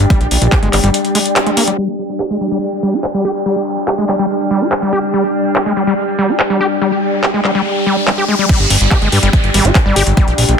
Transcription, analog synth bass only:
0.21 0.27 A#1 medium
0.31 0.38 A#1 loud
0.42 0.48 A#1 loud
0.63 0.69 G1 medium
0.73 0.80 G1 loud
0.84 0.90 G1 loud
8.60 8.66 G1 medium
8.70 8.77 G1 loud
8.81 8.87 G1 medium
9.02 9.08 G1 medium
9.12 9.19 G2 loud
9.23 9.29 G1 loud
9.44 9.50 G1 medium
9.54 9.61 G#1 loud
9.65 9.71 G1 medium
9.86 9.92 G1 medium
9.96 10.03 G1 loud
10.07 10.13 G1 medium
10.28 10.34 A#1 medium
10.38 10.45 A#1 loud
10.49 10.55 A#1 medium

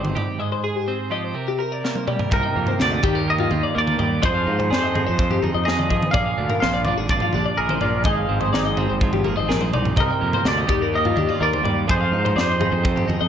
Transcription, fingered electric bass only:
0.00 0.15 G1 medium
2.32 2.43 C2 loud
2.56 2.67 F2 medium
2.81 3.03 D2 medium
3.04 3.49 D#2 medium
3.51 3.63 D#2 medium
3.76 3.98 D#2 medium
4.00 4.22 D#2 medium
4.24 4.46 F2 loud
4.47 4.70 G#2 loud
4.72 5.05 F2 medium
5.09 5.42 F2 medium
5.43 5.54 F2 medium
5.55 5.89 F2 medium
5.91 6.02 F3 medium
6.14 6.26 A#1 loud
6.38 6.50 D2 medium
6.63 6.96 A#1 medium
6.98 7.21 G#1 medium
7.34 7.45 A#1 medium
7.59 7.81 A#1 medium
7.82 8.05 A#1 medium
8.06 8.28 G#1 loud
8.29 8.52 G#1 medium
8.54 8.88 G#1 medium
8.91 9.24 G#1 medium
9.27 9.38 G#1 medium
9.39 9.49 G#1 medium
9.51 9.72 A#1 medium
9.75 9.96 C2 medium
9.97 10.09 C2 loud
10.22 10.33 F2 medium
10.45 10.68 D2 medium
10.69 11.14 D#2 medium
11.17 11.28 D#2 medium
11.41 11.63 D#2 medium
11.64 11.87 D#2 medium
11.90 12.11 F2 loud
12.12 12.35 G#2 medium
12.36 12.70 F2 medium
12.72 13.06 F2 medium
13.09 13.20 F2 medium
13.21 13.28 F2 medium

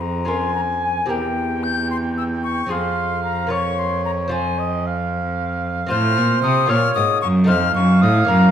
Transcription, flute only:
0.01 0.30 A#5 medium
0.28 0.54 C6 medium
0.55 0.61 A#5 medium
0.82 1.09 G#5 medium
1.09 1.65 G5 medium
1.63 1.90 G6 loud
1.91 1.97 C6 medium
2.18 2.24 E6 medium
2.43 2.72 C#6 loud
2.71 3.23 C6 medium
3.24 3.52 A#5 medium
3.51 3.80 C#6 loud
3.79 4.05 C6 medium
4.05 4.11 A#5 loud
4.32 4.84 G#5 medium
5.90 6.40 F6 loud
6.43 6.71 D#6 loud
6.70 6.94 F6 loud
6.95 7.21 D#6 loud
7.21 7.28 C#6 loud
7.48 7.75 F6 loud
7.75 8.03 C#6 loud
8.02 8.28 D#6 loud
8.28 8.51 A#5 loud

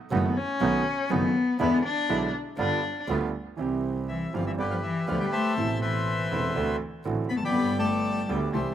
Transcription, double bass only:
0.11 0.32 F#1 loud
0.60 0.81 B1 medium
1.10 1.31 F#1 medium
1.59 1.80 E2 medium
2.09 2.30 B1 medium
2.58 2.79 G1 medium
3.08 3.29 D2 medium
3.59 4.29 C2 medium
4.33 4.54 G1 medium
4.58 4.79 G1 medium
5.08 5.28 D2 medium
5.57 6.27 A1 medium
6.30 6.51 E1 medium
6.56 6.76 D2 medium
7.05 7.26 A1 medium
7.29 7.54 F1 soft
7.55 8.25 G1 medium
8.29 8.49 D2 medium
8.53 8.74 C2 medium

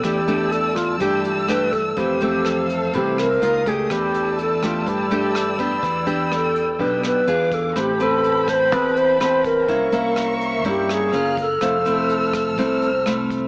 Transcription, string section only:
0.00 1.93 D5 medium
0.00 3.38 E6 medium
0.06 1.96 A5 medium
1.98 3.41 A4 medium
1.98 3.89 F5 medium
3.43 3.90 A#4 medium
3.43 3.90 D#6 medium
3.90 7.24 D5 medium
3.90 5.81 A5 medium
3.90 7.25 E6 medium
5.84 7.27 G5 medium
7.27 7.75 G#4 medium
7.27 7.75 F5 medium
7.27 7.75 D6 medium
7.75 9.67 G5 medium
7.75 9.67 A5 medium
7.75 9.67 B5 medium
9.68 11.11 A#4 medium
9.68 11.12 E5 medium
9.68 11.12 C#6 medium
11.12 11.61 A#4 medium
11.12 11.59 F6 medium
11.12 11.61 F#6 medium
11.60 13.48 A4 medium
11.60 13.48 E6 medium
11.60 13.48 F6 medium

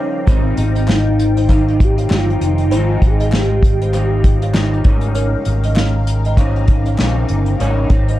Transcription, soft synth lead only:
0.30 0.94 C4 loud
0.92 1.52 D#4 medium
1.52 1.85 D#4 medium
1.83 2.16 G4 loud
2.15 2.46 F4 medium
2.45 2.77 D#4 loud
2.76 3.08 F4 loud
3.07 3.37 G#4 loud
3.36 4.56 G4 loud

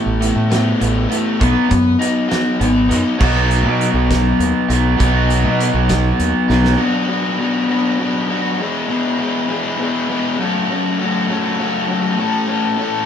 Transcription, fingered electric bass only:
0.06 0.30 A1 medium
0.36 0.73 A2 loud
0.81 1.05 A1 medium
1.41 1.53 B1 loud
1.71 1.95 F#2 medium
2.61 2.91 G#1 medium
2.90 3.02 F#2 loud
3.21 3.65 B1 loud
3.63 3.88 B2 medium
3.94 4.31 B1 medium
4.40 4.52 D#2 medium
4.70 4.94 B1 loud
5.00 5.46 B1 loud
5.44 5.69 B2 medium
5.74 6.11 B1 loud
6.19 6.32 D#2 medium
6.50 6.74 B1 loud

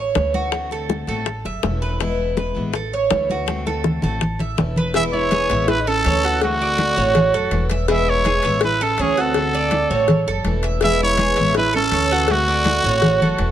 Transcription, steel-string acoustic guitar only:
0.15 0.52 E3 soft
0.15 0.52 A3 soft
0.15 0.53 C#4 soft
0.15 0.53 E4 medium
0.52 1.07 D3 medium
0.52 1.08 A3 medium
0.52 1.08 C4 medium
0.52 1.06 F#4 medium
1.08 1.26 A3 medium
1.08 1.26 C4 medium
1.08 1.26 F#4 medium
1.26 muted steel-string acoustic guitar stroke medium
1.63 1.99 E3 soft
1.63 2.00 A3 soft
1.63 2.00 C#4 medium
1.63 2.00 E4 medium
2.00 2.55 B2 medium
2.00 2.55 E3 medium
2.00 2.55 G#3 medium
2.00 2.55 B3 medium
2.00 2.53 E4 medium
2.55 2.71 E3 medium
2.55 2.73 G#3 medium
2.55 2.73 B3 medium
2.55 2.73 E4 medium
2.73 muted steel-string acoustic guitar stroke medium
3.10 3.46 E3 soft
3.10 3.46 A3 medium
3.10 3.48 C#4 medium
3.10 3.48 E4 medium
3.46 4.02 D3 medium
3.46 4.02 A3 medium
3.46 4.03 C4 medium
3.46 4.02 F#4 medium
4.03 4.21 A3 medium
4.03 4.21 C4 medium
4.03 4.21 F#4 medium
4.22 muted steel-string acoustic guitar stroke medium
4.57 4.93 E3 soft
4.57 4.94 A3 soft
4.57 4.95 C#4 medium
4.57 4.95 E4 medium
4.94 5.49 B2 medium
4.94 5.49 E3 medium
4.94 5.49 G#3 medium
4.94 5.50 B3 medium
4.94 5.48 E4 medium
5.50 5.67 E3 medium
5.50 5.68 G#3 medium
5.50 5.68 B3 medium
5.50 5.68 E4 medium
5.69 muted steel-string acoustic guitar stroke medium
6.05 6.41 E3 soft
6.05 6.42 A3 medium
6.05 6.42 C#4 medium
6.05 6.43 E4 medium
6.42 6.96 D3 medium
6.42 6.97 A3 medium
6.42 6.97 C4 medium
6.42 6.96 F#4 medium
6.97 7.16 A3 medium
6.97 7.15 C4 medium
6.97 7.15 F#4 medium
7.16 muted steel-string acoustic guitar stroke medium
7.51 7.88 E3 medium
7.51 7.88 A3 soft
7.51 7.89 C#4 medium
7.51 7.89 E4 medium
7.88 8.43 B2 medium
7.88 8.43 E3 medium
7.88 8.43 G#3 medium
7.88 8.44 B3 medium
7.88 8.42 E4 medium
8.44 8.62 E3 medium
8.44 8.62 G#3 medium
8.44 8.62 B3 medium
8.44 8.61 E4 medium
8.63 muted steel-string acoustic guitar stroke medium
8.99 9.35 E3 soft
8.99 9.35 A3 medium
8.99 9.36 C#4 medium
8.99 9.36 E4 soft
9.35 9.90 D3 medium
9.35 9.90 A3 medium
9.35 9.91 C4 medium
9.35 9.89 F#4 medium
9.90 10.08 A3 medium
9.90 10.09 C4 medium
9.90 10.08 F#4 medium
10.09 muted steel-string acoustic guitar stroke medium
10.46 10.82 E3 soft
10.46 10.82 A3 medium
10.46 10.82 C#4 medium
10.46 10.83 E4 medium
10.82 11.36 B2 medium
10.82 11.37 E3 medium
10.82 11.37 G#3 medium
10.82 11.37 B3 medium
10.82 11.36 E4 medium
11.37 11.54 E3 medium
11.37 11.55 G#3 medium
11.37 11.55 B3 medium
11.37 11.55 E4 medium
11.55 muted steel-string acoustic guitar stroke medium
11.92 12.28 E3 soft
11.92 12.28 A3 medium
11.92 12.29 C#4 medium
11.92 12.29 E4 medium
12.28 12.83 D3 medium
12.28 12.83 A3 medium
12.28 12.84 C4 medium
12.28 12.83 F#4 medium
12.84 13.01 A3 medium
12.84 13.02 C4 medium
12.84 13.01 F#4 medium
13.03 muted steel-string acoustic guitar stroke medium
13.39 13.51 E3 soft
13.39 13.51 A3 medium
13.39 13.51 C#4 medium
13.39 13.51 E4 medium

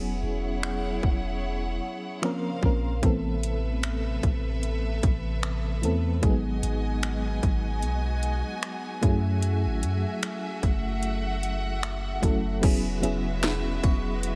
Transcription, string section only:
0.00 2.21 E4 medium
0.00 2.21 G#4 medium
0.00 2.21 C#5 medium
0.00 2.21 F#5 medium
2.23 3.02 C#3 medium
2.23 3.02 A#4 medium
2.23 3.02 C5 medium
2.23 3.02 F5 medium
3.03 6.20 C3 medium
3.03 6.20 A4 medium
3.03 6.20 B4 medium
3.03 6.20 E5 medium
6.23 9.00 B3 medium
6.23 12.59 F#4 medium
6.23 9.00 D#5 medium
6.23 10.59 G#5 medium
9.03 12.60 A3 medium
9.03 12.60 E5 medium
10.63 12.61 F#5 medium
12.63 14.35 C#3 medium
12.63 14.35 G#3 medium
12.63 14.35 F#4 medium
12.63 14.35 B4 medium
12.63 14.35 E5 medium

